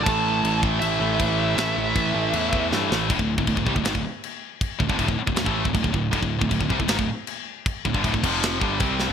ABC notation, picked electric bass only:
X:1
M:4/4
L:1/16
Q:1/4=158
K:Dm
V:1 name="Picked electric bass" clef=bass
A,,,4 A,,,4 A,,,2 A,,,2 A,,,4 | A,,,2 A,,,2 A,,,2 A,,,2 E,,4 G,,2 A,,,2 | D,,, D,,,2 D,,, D,,, D,,, C,, D,,, ^G,,, D,,, z6 | z2 D,,, G,,, D,,, D,,, z D,,, D,,, A,,,2 D,,, D,,, D,,, D,,,2 |
D,,, D,,,2 D,,, D,,, D,,, C,, D,,, ^G,,, D,,, z6 | z2 D,,, G,,, D,,, D,,, F,,,4 G,,,2 C,,3 G,,, |]